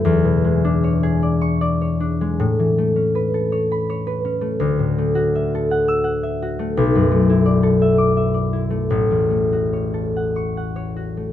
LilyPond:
\new Staff \with { instrumentName = "Harp" } { \time 3/4 \key a \major \tempo 4 = 81 << { <fis'' b''>4.~ <fis'' b''>16 cis'''4~ cis'''16~ | cis'''4.~ cis'''16 b''4~ b''16 | r4. r16 e'''4~ e'''16~ | e'''4.~ e'''16 d'''4~ d'''16 |
r4. r16 cis'''4~ cis'''16 | } \\ { <e, e' fis' b' e''>16 b,16 gis16 d'16 cis''16 gis'16 d''8 d''16 cis''16 d'16 gis16 | a,16 e16 a16 cis'16 b'16 a'16 cis''8 cis''16 b'16 cis'16 a16 | d,16 a,16 a16 fis'16 e''16 a'16 fis''8 fis''16 e''16 fis'16 a16 | b,,16 fis,16 a16 e'16 d''16 a'16 e''8 e''16 d''16 e'16 a16 |
a,,16 e,16 a16 fis'16 cis''16 a'16 fis''8 fis''16 cis''16 fis'16 a16 | } >> }